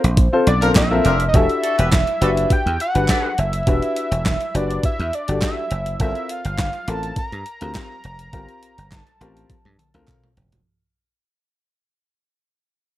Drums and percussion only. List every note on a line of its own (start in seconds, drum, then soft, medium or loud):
0.04 closed hi-hat medium
0.17 kick loud
0.17 closed hi-hat loud
0.47 closed hi-hat medium
0.62 closed hi-hat medium
0.75 kick loud
0.75 snare loud
0.75 clap medium
0.75 closed hi-hat loud
0.77 clap medium
1.05 closed hi-hat medium
1.20 closed hi-hat medium
1.34 kick loud
1.34 closed hi-hat medium
1.50 closed hi-hat soft
1.64 closed hi-hat medium
1.79 closed hi-hat medium
1.92 kick loud
1.92 snare loud
1.92 clap medium
1.92 closed hi-hat medium
2.07 closed hi-hat soft
2.22 closed hi-hat medium
2.37 closed hi-hat soft
2.50 kick loud
2.50 closed hi-hat loud
2.67 closed hi-hat soft
2.80 closed hi-hat medium
2.95 closed hi-hat medium
3.08 kick loud
3.08 snare loud
3.08 clap medium
3.08 closed hi-hat loud
3.10 clap medium
3.38 closed hi-hat medium
3.53 closed hi-hat medium
3.67 kick loud
3.67 closed hi-hat medium
3.82 closed hi-hat soft
3.96 closed hi-hat medium
4.12 closed hi-hat medium
4.26 kick loud
4.26 snare loud
4.26 clap medium
4.26 closed hi-hat medium
4.41 closed hi-hat soft
4.55 closed hi-hat medium
4.71 closed hi-hat medium
4.83 kick loud
4.83 closed hi-hat medium
5.00 closed hi-hat soft
5.13 closed hi-hat medium
5.28 closed hi-hat medium
5.42 kick loud
5.42 snare loud
5.42 clap medium
5.42 closed hi-hat medium
5.43 clap medium
5.71 closed hi-hat medium
5.86 closed hi-hat medium
6.00 kick loud
6.00 closed hi-hat medium
6.15 closed hi-hat soft
6.29 closed hi-hat medium
6.45 closed hi-hat medium
6.58 kick loud
6.58 snare loud
6.58 clap medium
6.58 closed hi-hat medium
6.73 closed hi-hat soft
6.88 closed hi-hat medium
7.03 closed hi-hat medium
7.16 kick loud
7.16 closed hi-hat medium
7.32 closed hi-hat soft
7.46 closed hi-hat medium
7.61 closed hi-hat medium
7.75 kick loud
7.75 snare loud
7.75 clap medium
7.75 closed hi-hat medium
7.76 clap medium
8.04 closed hi-hat medium
8.19 closed hi-hat medium
8.33 kick loud
8.33 closed hi-hat medium
8.49 closed hi-hat soft
8.63 closed hi-hat medium
8.78 closed hi-hat medium
8.92 kick loud
8.92 snare loud
8.92 clap medium
8.92 closed hi-hat loud
8.93 clap loud
9.07 closed hi-hat soft
9.21 closed hi-hat medium
9.37 closed hi-hat soft
9.50 kick loud
9.50 closed hi-hat loud
9.50 high tom medium
9.65 high tom medium
9.79 closed hi-hat medium
9.79 mid tom medium
9.94 closed hi-hat medium
9.94 mid tom medium
10.08 kick loud
10.08 clap medium
10.08 closed hi-hat medium
10.08 mid tom medium
10.24 mid tom medium
10.37 closed hi-hat medium
10.37 floor tom loud
10.52 closed hi-hat medium
10.52 floor tom medium